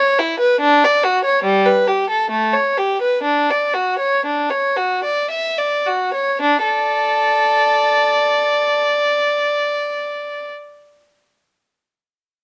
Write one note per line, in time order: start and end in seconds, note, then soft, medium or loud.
0.00 0.18 C#5 medium
0.20 0.40 E4 medium
0.40 0.60 B4 medium
0.61 0.81 D4 medium
0.84 1.04 D5 medium
1.04 1.24 F#4 medium
1.25 1.44 C#5 medium
1.44 1.65 G3 medium
1.66 1.87 B4 medium
1.88 2.09 G4 soft
2.10 2.31 A4 medium
2.31 2.53 A3 medium
2.53 2.77 C#5 soft
2.78 3.01 G4 soft
3.02 3.25 B4 soft
3.23 3.48 D4 medium
3.50 3.75 D5 soft
3.74 4.00 F#4 soft
3.99 4.25 C#5 soft
4.26 4.51 D4 soft
4.50 4.78 C#5 soft
4.77 5.04 F#4 soft
5.04 5.31 D5 soft
5.31 5.59 E5 medium
5.58 5.88 D5 soft
5.86 6.16 F#4 soft
6.14 6.43 C#5 soft
6.41 6.65 D4 medium
6.64 8.80 A4 soft
6.64 10.49 D5 medium